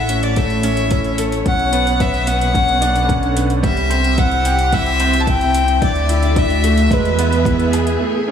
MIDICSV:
0, 0, Header, 1, 6, 480
1, 0, Start_track
1, 0, Tempo, 545455
1, 1285, Time_signature, 4, 2, 24, 8
1, 7315, End_track
2, 0, Start_track
2, 0, Title_t, "Violin"
2, 0, Program_c, 0, 40
2, 0, Note_on_c, 0, 76, 90
2, 204, Note_on_c, 0, 74, 81
2, 218, Note_off_c, 0, 76, 0
2, 336, Note_on_c, 0, 76, 81
2, 349, Note_off_c, 0, 74, 0
2, 1050, Note_off_c, 0, 76, 0
2, 1304, Note_on_c, 0, 78, 99
2, 1767, Note_on_c, 0, 76, 89
2, 1781, Note_off_c, 0, 78, 0
2, 2002, Note_on_c, 0, 78, 100
2, 2016, Note_off_c, 0, 76, 0
2, 2963, Note_off_c, 0, 78, 0
2, 3203, Note_on_c, 0, 76, 90
2, 3686, Note_on_c, 0, 78, 96
2, 3699, Note_off_c, 0, 76, 0
2, 4169, Note_on_c, 0, 76, 104
2, 4182, Note_off_c, 0, 78, 0
2, 4580, Note_on_c, 0, 81, 77
2, 4593, Note_off_c, 0, 76, 0
2, 4653, Note_on_c, 0, 79, 103
2, 4666, Note_off_c, 0, 81, 0
2, 5129, Note_off_c, 0, 79, 0
2, 5133, Note_on_c, 0, 74, 96
2, 5615, Note_on_c, 0, 76, 91
2, 5628, Note_off_c, 0, 74, 0
2, 6102, Note_on_c, 0, 71, 78
2, 6115, Note_off_c, 0, 76, 0
2, 6813, Note_off_c, 0, 71, 0
2, 7315, End_track
3, 0, Start_track
3, 0, Title_t, "Upright piano"
3, 0, Program_c, 1, 0
3, 0, Control_c, 1, 64, 127
3, 0, Note_on_c, 1, 64, 74
3, 0, Note_on_c, 1, 69, 88
3, 81, Note_on_c, 1, 61, 62
3, 311, Note_off_c, 1, 61, 0
3, 322, Note_on_c, 1, 57, 82
3, 460, Note_off_c, 1, 57, 0
3, 560, Note_on_c, 1, 61, 95
3, 699, Note_off_c, 1, 61, 0
3, 803, Note_off_c, 1, 64, 0
3, 803, Note_on_c, 1, 64, 68
3, 940, Note_off_c, 1, 64, 0
3, 1040, Note_off_c, 1, 69, 0
3, 1040, Note_on_c, 1, 69, 92
3, 1270, Note_off_c, 1, 69, 0
3, 1280, Note_on_c, 1, 61, 77
3, 1295, Control_c, 1, 64, 0
3, 1452, Control_c, 1, 64, 127
3, 1510, Note_off_c, 1, 61, 0
3, 1519, Note_on_c, 1, 59, 89
3, 1750, Note_off_c, 1, 59, 0
3, 1758, Note_on_c, 1, 71, 76
3, 1989, Note_off_c, 1, 71, 0
3, 1999, Note_on_c, 1, 59, 69
3, 2139, Note_off_c, 1, 59, 0
3, 2238, Note_on_c, 1, 61, 73
3, 2469, Note_off_c, 1, 61, 0
3, 2477, Note_on_c, 1, 62, 97
3, 2618, Note_off_c, 1, 62, 0
3, 2714, Note_on_c, 1, 61, 68
3, 2947, Note_off_c, 1, 61, 0
3, 2955, Note_on_c, 1, 59, 69
3, 3188, Note_off_c, 1, 59, 0
3, 3193, Note_on_c, 1, 55, 103
3, 3216, Control_c, 1, 64, 0
3, 3336, Note_off_c, 1, 55, 0
3, 3354, Control_c, 1, 64, 127
3, 3433, Note_on_c, 1, 60, 90
3, 3576, Note_off_c, 1, 60, 0
3, 3676, Note_on_c, 1, 64, 75
3, 3817, Note_off_c, 1, 64, 0
3, 3920, Note_on_c, 1, 67, 94
3, 4150, Note_off_c, 1, 67, 0
3, 4157, Note_on_c, 1, 64, 81
3, 4389, Note_off_c, 1, 64, 0
3, 4402, Note_on_c, 1, 60, 103
3, 4632, Note_off_c, 1, 60, 0
3, 4646, Note_on_c, 1, 76, 74
3, 4873, Note_off_c, 1, 76, 0
3, 4884, Note_on_c, 1, 60, 72
3, 5021, Note_off_c, 1, 60, 0
3, 5126, Note_on_c, 1, 62, 83
3, 5134, Control_c, 1, 64, 0
3, 5300, Control_c, 1, 64, 127
3, 5353, Note_off_c, 1, 62, 0
3, 5365, Note_on_c, 1, 64, 90
3, 5502, Note_off_c, 1, 64, 0
3, 5606, Note_on_c, 1, 62, 71
3, 5834, Note_off_c, 1, 62, 0
3, 5846, Note_on_c, 1, 57, 70
3, 6073, Note_off_c, 1, 57, 0
3, 6084, Note_on_c, 1, 56, 95
3, 6097, Control_c, 1, 64, 0
3, 6221, Note_off_c, 1, 56, 0
3, 6258, Control_c, 1, 64, 127
3, 6327, Note_on_c, 1, 59, 100
3, 6463, Note_off_c, 1, 59, 0
3, 6568, Note_on_c, 1, 64, 76
3, 6703, Note_off_c, 1, 64, 0
3, 6806, Note_on_c, 1, 68, 99
3, 7033, Note_off_c, 1, 68, 0
3, 7044, Note_on_c, 1, 57, 83
3, 7056, Control_c, 1, 64, 0
3, 7181, Note_off_c, 1, 57, 0
3, 7202, Control_c, 1, 64, 127
3, 7283, Note_on_c, 1, 61, 79
3, 7315, Note_off_c, 1, 61, 0
3, 7315, End_track
4, 0, Start_track
4, 0, Title_t, "String section"
4, 0, Program_c, 2, 48
4, 0, Note_on_c, 2, 45, 79
4, 0, Note_on_c, 2, 57, 72
4, 0, Note_on_c, 2, 64, 58
4, 0, Note_on_c, 2, 66, 65
4, 0, Note_on_c, 2, 76, 68
4, 132, Note_off_c, 2, 66, 0
4, 134, Note_off_c, 2, 76, 0
4, 242, Note_on_c, 2, 73, 79
4, 1283, Note_off_c, 2, 45, 0
4, 1287, Note_off_c, 2, 57, 0
4, 1291, Note_on_c, 2, 47, 82
4, 1420, Note_on_c, 2, 59, 75
4, 2047, Note_off_c, 2, 64, 0
4, 2145, Note_on_c, 2, 50, 71
4, 3205, Note_off_c, 2, 59, 0
4, 3208, Note_off_c, 2, 47, 0
4, 3211, Note_off_c, 2, 73, 0
4, 3218, Note_on_c, 2, 48, 76
4, 3495, Note_on_c, 2, 67, 72
4, 3810, Note_on_c, 2, 60, 73
4, 3971, Note_off_c, 2, 50, 0
4, 4078, Note_on_c, 2, 76, 82
4, 5122, Note_on_c, 2, 50, 77
4, 5128, Note_off_c, 2, 60, 0
4, 5128, Note_off_c, 2, 67, 0
4, 5131, Note_off_c, 2, 48, 0
4, 5535, Note_on_c, 2, 66, 73
4, 5552, Note_on_c, 2, 57, 80
4, 6077, Note_on_c, 2, 52, 67
4, 6082, Note_off_c, 2, 57, 0
4, 6083, Note_off_c, 2, 50, 0
4, 6195, Note_on_c, 2, 59, 73
4, 6216, Note_on_c, 2, 68, 88
4, 6473, Note_off_c, 2, 66, 0
4, 7041, Note_off_c, 2, 52, 0
4, 7044, Note_on_c, 2, 45, 62
4, 7315, Note_off_c, 2, 45, 0
4, 7315, Note_off_c, 2, 59, 0
4, 7315, Note_off_c, 2, 68, 0
4, 7315, Note_off_c, 2, 76, 0
4, 7315, End_track
5, 0, Start_track
5, 0, Title_t, "Analog synth bass"
5, 0, Program_c, 3, 38
5, 0, Note_on_c, 3, 33, 88
5, 1257, Note_off_c, 3, 33, 0
5, 1284, Note_on_c, 3, 35, 89
5, 3180, Note_off_c, 3, 35, 0
5, 3195, Note_on_c, 3, 36, 84
5, 5096, Note_off_c, 3, 36, 0
5, 5120, Note_on_c, 3, 38, 87
5, 6059, Note_off_c, 3, 38, 0
5, 6080, Note_on_c, 3, 40, 84
5, 7018, Note_off_c, 3, 40, 0
5, 7315, End_track
6, 0, Start_track
6, 0, Title_t, "Drums"
6, 79, Note_on_c, 9, 42, 67
6, 167, Note_off_c, 9, 42, 0
6, 201, Note_on_c, 9, 42, 30
6, 289, Note_off_c, 9, 42, 0
6, 320, Note_on_c, 9, 42, 39
6, 322, Note_on_c, 9, 36, 82
6, 408, Note_off_c, 9, 42, 0
6, 410, Note_off_c, 9, 36, 0
6, 440, Note_on_c, 9, 42, 18
6, 528, Note_off_c, 9, 42, 0
6, 558, Note_on_c, 9, 42, 71
6, 646, Note_off_c, 9, 42, 0
6, 677, Note_on_c, 9, 42, 29
6, 765, Note_off_c, 9, 42, 0
6, 797, Note_on_c, 9, 42, 41
6, 803, Note_on_c, 9, 36, 88
6, 885, Note_off_c, 9, 42, 0
6, 891, Note_off_c, 9, 36, 0
6, 919, Note_on_c, 9, 42, 19
6, 1007, Note_off_c, 9, 42, 0
6, 1040, Note_on_c, 9, 42, 72
6, 1128, Note_off_c, 9, 42, 0
6, 1164, Note_on_c, 9, 42, 28
6, 1252, Note_off_c, 9, 42, 0
6, 1282, Note_on_c, 9, 42, 35
6, 1283, Note_on_c, 9, 36, 96
6, 1370, Note_off_c, 9, 42, 0
6, 1371, Note_off_c, 9, 36, 0
6, 1403, Note_on_c, 9, 42, 17
6, 1491, Note_off_c, 9, 42, 0
6, 1520, Note_on_c, 9, 42, 60
6, 1608, Note_off_c, 9, 42, 0
6, 1645, Note_on_c, 9, 42, 28
6, 1733, Note_off_c, 9, 42, 0
6, 1762, Note_on_c, 9, 42, 39
6, 1763, Note_on_c, 9, 36, 92
6, 1850, Note_off_c, 9, 42, 0
6, 1851, Note_off_c, 9, 36, 0
6, 1882, Note_on_c, 9, 42, 18
6, 1970, Note_off_c, 9, 42, 0
6, 1999, Note_on_c, 9, 42, 68
6, 2087, Note_off_c, 9, 42, 0
6, 2124, Note_on_c, 9, 42, 30
6, 2212, Note_off_c, 9, 42, 0
6, 2241, Note_on_c, 9, 36, 90
6, 2245, Note_on_c, 9, 42, 38
6, 2329, Note_off_c, 9, 36, 0
6, 2333, Note_off_c, 9, 42, 0
6, 2361, Note_on_c, 9, 42, 18
6, 2449, Note_off_c, 9, 42, 0
6, 2481, Note_on_c, 9, 42, 69
6, 2569, Note_off_c, 9, 42, 0
6, 2601, Note_on_c, 9, 42, 29
6, 2689, Note_off_c, 9, 42, 0
6, 2719, Note_on_c, 9, 36, 96
6, 2723, Note_on_c, 9, 42, 39
6, 2807, Note_off_c, 9, 36, 0
6, 2811, Note_off_c, 9, 42, 0
6, 2841, Note_on_c, 9, 42, 19
6, 2929, Note_off_c, 9, 42, 0
6, 2962, Note_on_c, 9, 42, 70
6, 3050, Note_off_c, 9, 42, 0
6, 3080, Note_on_c, 9, 42, 28
6, 3168, Note_off_c, 9, 42, 0
6, 3198, Note_on_c, 9, 36, 92
6, 3199, Note_on_c, 9, 42, 36
6, 3286, Note_off_c, 9, 36, 0
6, 3287, Note_off_c, 9, 42, 0
6, 3317, Note_on_c, 9, 42, 19
6, 3405, Note_off_c, 9, 42, 0
6, 3438, Note_on_c, 9, 42, 57
6, 3526, Note_off_c, 9, 42, 0
6, 3558, Note_on_c, 9, 42, 27
6, 3646, Note_off_c, 9, 42, 0
6, 3677, Note_on_c, 9, 42, 40
6, 3679, Note_on_c, 9, 36, 100
6, 3765, Note_off_c, 9, 42, 0
6, 3767, Note_off_c, 9, 36, 0
6, 3797, Note_on_c, 9, 42, 18
6, 3885, Note_off_c, 9, 42, 0
6, 3917, Note_on_c, 9, 42, 66
6, 4005, Note_off_c, 9, 42, 0
6, 4036, Note_on_c, 9, 42, 30
6, 4124, Note_off_c, 9, 42, 0
6, 4158, Note_on_c, 9, 42, 37
6, 4159, Note_on_c, 9, 36, 81
6, 4246, Note_off_c, 9, 42, 0
6, 4247, Note_off_c, 9, 36, 0
6, 4280, Note_on_c, 9, 42, 17
6, 4368, Note_off_c, 9, 42, 0
6, 4397, Note_on_c, 9, 42, 63
6, 4485, Note_off_c, 9, 42, 0
6, 4518, Note_on_c, 9, 42, 30
6, 4606, Note_off_c, 9, 42, 0
6, 4639, Note_on_c, 9, 36, 84
6, 4641, Note_on_c, 9, 42, 41
6, 4727, Note_off_c, 9, 36, 0
6, 4729, Note_off_c, 9, 42, 0
6, 4762, Note_on_c, 9, 42, 20
6, 4850, Note_off_c, 9, 42, 0
6, 4879, Note_on_c, 9, 42, 68
6, 4967, Note_off_c, 9, 42, 0
6, 4998, Note_on_c, 9, 42, 28
6, 5086, Note_off_c, 9, 42, 0
6, 5120, Note_on_c, 9, 36, 99
6, 5121, Note_on_c, 9, 42, 36
6, 5208, Note_off_c, 9, 36, 0
6, 5209, Note_off_c, 9, 42, 0
6, 5241, Note_on_c, 9, 42, 18
6, 5329, Note_off_c, 9, 42, 0
6, 5361, Note_on_c, 9, 42, 62
6, 5449, Note_off_c, 9, 42, 0
6, 5479, Note_on_c, 9, 42, 27
6, 5567, Note_off_c, 9, 42, 0
6, 5599, Note_on_c, 9, 42, 43
6, 5600, Note_on_c, 9, 36, 102
6, 5687, Note_off_c, 9, 42, 0
6, 5688, Note_off_c, 9, 36, 0
6, 5721, Note_on_c, 9, 42, 19
6, 5809, Note_off_c, 9, 42, 0
6, 5842, Note_on_c, 9, 42, 65
6, 5930, Note_off_c, 9, 42, 0
6, 5962, Note_on_c, 9, 42, 31
6, 6050, Note_off_c, 9, 42, 0
6, 6079, Note_on_c, 9, 36, 94
6, 6086, Note_on_c, 9, 42, 38
6, 6167, Note_off_c, 9, 36, 0
6, 6174, Note_off_c, 9, 42, 0
6, 6207, Note_on_c, 9, 42, 19
6, 6295, Note_off_c, 9, 42, 0
6, 6324, Note_on_c, 9, 42, 70
6, 6412, Note_off_c, 9, 42, 0
6, 6446, Note_on_c, 9, 42, 29
6, 6534, Note_off_c, 9, 42, 0
6, 6559, Note_on_c, 9, 36, 98
6, 6567, Note_on_c, 9, 42, 41
6, 6647, Note_off_c, 9, 36, 0
6, 6655, Note_off_c, 9, 42, 0
6, 6683, Note_on_c, 9, 42, 19
6, 6771, Note_off_c, 9, 42, 0
6, 6805, Note_on_c, 9, 42, 69
6, 6893, Note_off_c, 9, 42, 0
6, 6924, Note_on_c, 9, 42, 29
6, 7012, Note_off_c, 9, 42, 0
6, 7315, End_track
0, 0, End_of_file